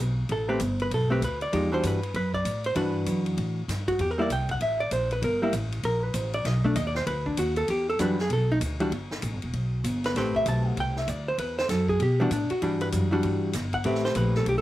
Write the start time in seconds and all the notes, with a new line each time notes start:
Already playing: B1
0.29 A1 A4, ride
0.49 A3 C4 G4 B4 C5
0.60 G1, hi-hat pedal, ride
0.80 B4, ride
0.91 B1 A4, ride
1.10 A3 C4 G4 B4
1.22 D2 B4, hi-hat pedal, ride
1.41 D5, ride
1.52 E2 F3 G#3 D#4 G4, ride
1.72 E3 G3 D4 F#4 C5
1.83 G2 B4, hi-hat pedal, ride
2.03 ride
2.14 F#2 B4, ride
2.34 D5, kick
2.45 A2, hi-hat pedal, ride
2.64 C5, ride
2.75 G2 E3 D4 F#4 B4, ride
3.06 F#2, hi-hat pedal, ride
3.26 ride
3.37 A2, ride
3.68 G2, snare, hi-hat pedal, ride
3.88 F#4, kick, ride
3.99 E2 G4, ride
4.11 A#4
4.18 G3 A#3 E4 D5
4.30 C2 G5, hi-hat pedal, ride
4.49 F#5, kick, ride
4.61 A1 E5, ride
4.80 D5
4.91 A#1 C5, hi-hat pedal, ride
5.11 B4, ride
5.22 G1 A#4, ride
5.42 G3 A#3 E4
5.53 A1, hi-hat pedal, ride
5.72 ride
5.83 A#1 A#4, ride
6.04 B4
6.14 A1 C5, hi-hat pedal, ride
6.33 D5, ride
6.45 B1 D#5, snare, ride
6.64 A3 D4, kick
6.76 D#2 D#5, hi-hat pedal, ride
6.87 D5
6.95 C5, snare
7.07 D2 B4, ride
7.26 D4, kick
7.37 D#2 F#4, hi-hat pedal, ride
7.56 A4, ride
7.68 E2 G4, ride
7.90 A4
7.99 F#2 E3 G3 D4 F#4 B4, hi-hat pedal, ride
8.19 G#4, snare
8.29 B1 A4, ride
8.52 D#4
8.61 D2, hi-hat pedal, ride
8.80 E3 G3 D4 F#4, ride
8.92 G1, ride
9.11 snare
9.22 A1, hi-hat pedal, ride
9.33 G1
9.42 E1, ride
9.53 B1, ride
9.84 G1, hi-hat pedal, ride
10.04 B4, snare, ride
10.15 A1 A3 C4 G4 B4 C5, snare, ride
10.35 E5, kick
10.46 B1 A5, hi-hat pedal, ride
10.67 F#5
10.77 C2 G5, ride
10.96 E5, snare
11.08 D2 D5, hi-hat pedal, ride
11.28 C5
11.38 E2 B4, ride
11.58 C5, snare
11.69 F#2 A4, snare, hi-hat pedal, ride
11.88 G#4, kick
11.99 B2 G4, ride
12.20 E3 G3 B3 D4 F#4
12.31 A2 D4, hi-hat pedal, ride
12.50 F#4, muted upright bass stroke, ride
12.62 G2 E3 G3 D4 F#4 G4, ride
12.81 B4, ride
12.92 F#2, hi-hat pedal, ride
13.11 E3 G3 D4 F#4
13.23 G2, ride
13.53 G1, snare, hi-hat pedal, ride
13.73 F#5, kick, ride
13.84 A1 A3 C4 G4 B4 E5, ride
13.95 snare
14.05 C5, snare
14.15 A#1 B4, hi-hat pedal, ride
14.35 A4, snare
14.46 B1 G4, ride
14.57 A1 A4